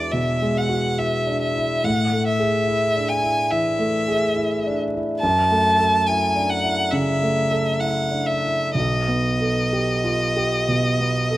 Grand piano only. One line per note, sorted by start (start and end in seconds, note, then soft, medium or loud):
0.00 1.87 E2 soft
0.00 0.42 G#3 soft
0.00 1.26 D4 soft
0.00 0.98 E4 soft
0.00 0.69 F#4 soft
0.13 0.58 B2 soft
0.42 0.87 G#3 soft
0.69 1.15 F#4 soft
0.98 1.44 E4 soft
1.26 1.56 D4 soft
1.55 1.84 E4 soft
1.84 3.47 A2 soft
2.12 2.57 A3 soft
2.40 2.84 G#4 soft
2.67 3.12 E4 soft
2.96 3.23 D4 soft
3.22 3.67 E4 soft
3.52 3.97 E3 soft
3.79 4.25 A3 soft
4.08 4.54 G#4 soft
4.36 4.81 E4 soft
4.66 4.94 D4 soft
4.94 5.22 E4 soft
5.23 6.88 F#2 soft
5.51 5.95 A3 soft
5.79 6.23 A4 soft
6.08 6.52 E4 soft
6.35 6.63 D4 soft
6.63 7.08 E4 soft
6.93 7.38 C#3 soft
7.22 7.69 A3 soft
7.51 7.99 A4 soft
7.80 8.30 E4 soft
8.11 8.42 D4 soft
8.44 8.75 E4 soft
8.75 10.65 B1 soft
9.08 9.59 B3 soft
9.40 9.91 A4 soft
9.73 10.24 G4 soft
10.04 10.37 F4 soft
10.36 10.88 G4 soft
10.68 11.19 B2 soft
11.00 11.37 B3 soft
11.30 11.37 A4 soft